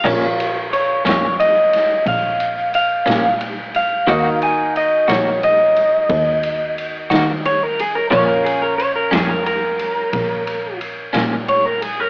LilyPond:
<<
  \new Staff \with { instrumentName = "Clean electric guitar" } { \time 12/8 \key bes \minor \tempo 4. = 59 r4 des''8 des''8 ees''4 f''4 f''4 r8 f''8~ | f''8 aes''8 ees''8 des''8 ees''2 r4 des''16 bes'16 aes'16 bes'16 | des''16 bes'16 aes'16 bes'16 des''16 bes'16 aes'16 bes'16 bes'2 r4 des''16 bes'16 aes'16 bes'16 | }
  \new Staff \with { instrumentName = "Upright piano" } { \time 12/8 \key bes \minor <f' bes' des'' f''>1. | <ees' ges' bes' ees''>1. | <des' f' bes' des''>1. | }
  \new Staff \with { instrumentName = "Clean electric guitar" } { \time 12/8 \key bes \minor <bes, f bes des'>8 r4 <bes, f bes des'>8 r2 r8 <bes, f bes des'>8 r4 | <ees bes ees' ges'>8 r4 <ees bes ees' ges'>8 r2 r8 <ees bes ees' ges'>8 r4 | <bes, f bes des'>8 r4 <bes, f bes des'>8 r2 r8 <bes, f bes des'>8 r4 | }
  \new Staff \with { instrumentName = "Double bass" } { \clef bass \time 12/8 \key bes \minor bes,,4. f,4. bes,,4. bes,4. | ees,4. bes,,4. ees,4. ees4. | bes,,4. f,4. bes,,4. bes,4. | }
  \new DrumStaff \with { instrumentName = "Drums" } \drummode { \time 12/8 <cymc bd>8 cymr8 cymr8 <cymr sn>8 cymr8 <cymr sn>8 <bd cymr>8 cymr8 cymr8 <cymr sn>8 cymr8 cymr8 | <bd cymr>8 cymr8 cymr8 <cymr sn>8 cymr8 cymr8 <bd cymr>8 cymr8 cymr8 <cymr sn>8 cymr8 cymr8 | <bd cymr>8 cymr8 cymr8 <cymr sn>8 cymr8 cymr8 <bd cymr>8 cymr8 cymr8 <cymr sn>8 cymr8 cymr8 | }
>>